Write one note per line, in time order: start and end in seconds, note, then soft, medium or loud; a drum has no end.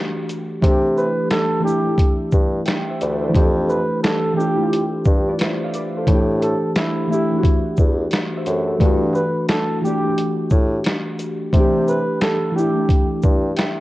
0.00 0.61 E3 medium
0.00 0.63 A3 medium
0.00 0.63 D4 medium
0.00 0.63 G4 medium
0.29 closed hi-hat soft
0.29 shaker soft
0.61 1.10 C3 loud
0.61 1.58 E3 medium
0.61 1.59 A3 medium
0.61 kick loud
0.61 closed hi-hat medium
0.66 1.60 D4 medium
0.66 1.61 G4 medium
0.97 1.27 B4 medium
0.97 shaker soft
1.31 1.61 A4 medium
1.31 finger snap medium
1.31 snare loud
1.31 closed hi-hat medium
1.60 1.81 E3 medium
1.60 1.83 A3 medium
1.64 1.85 D4 medium
1.64 1.86 E4 medium
1.64 2.17 G4 medium
1.64 shaker soft
1.82 3.06 E3 medium
1.82 3.07 A3 medium
1.87 3.08 D4 medium
1.87 3.10 E4 medium
1.98 kick medium
1.98 closed hi-hat medium
2.32 2.62 G2 medium
2.32 kick medium
2.32 shaker soft
2.66 2.87 E5 medium
2.66 2.87 G5 medium
2.66 finger snap medium
2.66 snare loud
2.66 closed hi-hat medium
2.90 3.01 C5 medium
2.90 3.01 E5 medium
3.01 3.30 D2 medium
3.01 3.22 B4 medium
3.01 3.22 D5 medium
3.01 closed hi-hat soft
3.01 shaker soft
3.24 3.56 A4 medium
3.24 3.56 C5 medium
3.29 4.28 E3 medium
3.29 4.30 A3 medium
3.34 3.82 F2 loud
3.34 4.31 D4 medium
3.34 4.32 G4 medium
3.34 kick loud
3.34 closed hi-hat medium
3.69 4.00 B4 medium
3.69 shaker soft
4.03 4.34 A4 medium
4.03 finger snap medium
4.03 snare loud
4.03 closed hi-hat medium
4.33 4.55 E3 medium
4.33 4.57 A3 medium
4.33 4.89 G4 medium
4.38 4.58 D4 medium
4.38 4.59 F4 medium
4.38 shaker soft
4.55 5.80 A3 medium
4.55 5.79 E4 medium
4.60 5.81 D4 medium
4.60 5.83 F4 medium
4.73 closed hi-hat medium
5.05 5.34 G2 loud
5.05 kick medium
5.05 shaker soft
5.28 5.40 B4 soft
5.28 5.39 D5 medium
5.39 5.62 C5 medium
5.39 5.62 E5 medium
5.39 finger snap medium
5.39 snare medium
5.39 closed hi-hat medium
5.64 5.73 D5 medium
5.64 5.74 F5 medium
5.74 5.95 B4 medium
5.74 5.95 D5 medium
5.74 closed hi-hat soft
5.74 shaker soft
5.97 6.29 A4 medium
5.97 6.29 C5 medium
6.07 6.55 A2 loud
6.07 7.04 E3 medium
6.07 7.05 A3 medium
6.07 kick loud
6.07 closed hi-hat medium
6.12 7.06 D4 medium
6.12 7.07 G4 medium
6.42 6.72 A4 medium
6.42 closed hi-hat soft
6.42 shaker soft
6.76 7.07 E4 medium
6.76 finger snap medium
6.76 snare loud
6.76 closed hi-hat medium
7.07 7.29 E3 medium
7.07 7.30 A3 medium
7.07 7.63 E4 medium
7.11 7.31 D4 medium
7.11 7.32 G4 medium
7.11 shaker medium
7.31 8.53 E3 medium
7.31 8.54 A3 medium
7.35 8.55 D4 medium
7.35 8.15 F#4 medium
7.43 kick loud
7.43 closed hi-hat medium
7.77 8.07 E2 medium
7.77 kick medium
7.77 shaker soft
8.11 finger snap medium
8.11 snare loud
8.11 closed hi-hat medium
8.37 8.47 C5 soft
8.37 8.47 E5 medium
8.46 8.75 F#2 medium
8.46 8.66 A4 medium
8.46 8.68 C5 medium
8.46 closed hi-hat soft
8.46 shaker soft
8.67 8.84 F#4 medium
8.67 9.00 A4 medium
8.78 9.28 G2 loud
8.78 9.76 E3 medium
8.78 9.77 A3 medium
8.78 kick loud
8.78 closed hi-hat medium
8.83 9.78 D4 medium
8.83 9.79 F#4 medium
9.14 9.45 B4 medium
9.14 shaker soft
9.49 9.79 A4 medium
9.49 finger snap medium
9.49 snare loud
9.49 closed hi-hat medium
9.81 10.01 E3 medium
9.81 10.03 A3 medium
9.81 10.36 G4 medium
9.81 shaker soft
9.86 10.05 D4 medium
9.86 10.06 G4 medium
10.02 11.25 E3 medium
10.02 11.27 A3 medium
10.07 11.28 D4 medium
10.07 11.29 G4 medium
10.18 closed hi-hat medium
10.50 10.80 A2 loud
10.50 kick medium
10.50 shaker medium
10.85 finger snap medium
10.85 snare loud
10.85 closed hi-hat medium
11.19 closed hi-hat soft
11.19 shaker soft
11.53 12.01 C3 loud
11.53 12.49 E3 medium
11.53 12.50 A3 medium
11.53 kick loud
11.53 closed hi-hat medium
11.57 12.51 D4 medium
11.57 12.53 G4 medium
11.88 12.19 B4 medium
11.88 shaker soft
12.21 12.53 A4 medium
12.21 finger snap medium
12.21 snare loud
12.21 closed hi-hat medium
12.52 12.72 E3 medium
12.52 12.75 A3 medium
12.56 12.76 D4 medium
12.56 12.77 E4 medium
12.56 13.08 G4 medium
12.56 shaker soft
12.74 13.80 E3 medium
12.74 13.80 A3 medium
12.78 13.80 D4 medium
12.78 13.80 E4 medium
12.89 kick loud
12.89 closed hi-hat medium
13.22 13.53 G2 medium
13.22 kick medium
13.22 shaker soft
13.56 13.78 E5 medium
13.56 13.78 G5 medium
13.56 finger snap medium
13.56 snare loud
13.56 closed hi-hat medium